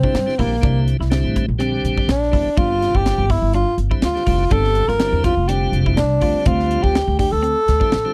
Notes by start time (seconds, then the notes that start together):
Already playing: C4
0.03 D3 G3 C4 D4 E4, kick
0.14 G2, snare, closed hi-hat
0.26 D3 G3 C4 E4, snare
0.38 A#1 D3 G3 A#3 C4 E4 G4, kick, open hi-hat
0.61 C2 D3 G3 C4 D4 E4, kick, closed hi-hat
0.88 closed hi-hat
1.00 C2 E4, snare
1.10 D3 G3 C4 E4, snare, closed hi-hat
1.24 A2
1.36 E4, kick, closed hi-hat
1.48 A#1
1.59 D3 G3 C4 G4, closed hi-hat
1.84 A#1, closed hi-hat
1.97 D4, kick
2.08 A#1 D4, snare, closed hi-hat
2.23 snare
2.31 E2 D3 G3 C4 E4, kick, open hi-hat
2.46 muted upright bass stroke
2.57 G1 D3 G3 C4 D4 F4, kick, closed hi-hat
2.82 snare, closed hi-hat
2.95 G1 E4 G4, kick
3.06 snare, closed hi-hat
3.18 G1
3.30 E4, kick, open hi-hat
3.42 G1
3.53 D4 F4, closed hi-hat
3.78 G1, closed hi-hat
3.90 D3 G3 C4 E4, kick
4.02 D2 F4, snare, closed hi-hat
4.15 D3 G3 C4 G4, snare
4.26 F1 D3 G3 C4 E4 F4, kick, open hi-hat
4.50 G1 D3 G3 C4 D4 G4 A4, kick, closed hi-hat
4.64 snare
4.75 closed hi-hat
4.88 G1 F4 A#4, snare
4.99 D3 G3 C4 E4, snare, closed hi-hat
5.12 E2
5.24 F4, kick, closed hi-hat
5.37 F1
5.48 D3 G3 C4 D4 F4 G4, closed hi-hat
5.72 F1, closed hi-hat
5.86 E4, kick
5.96 C2 D4, snare, closed hi-hat
6.21 D2 D3 G3 C4 F4, kick, open hi-hat
6.34 muted upright bass stroke
6.46 D2 C4 F4, kick, closed hi-hat
6.60 snare
6.71 closed hi-hat
6.83 D2 D4 G4, kick
6.95 snare, closed hi-hat
7.08 D2
7.19 D4 G4, kick, open hi-hat
7.32 D2 A4
7.43 C4, closed hi-hat
7.68 D2, snare, closed hi-hat
7.79 D3 G3 C4 D4 E4, kick
7.92 A1, snare, closed hi-hat
8.05 D3 G3 C4 F4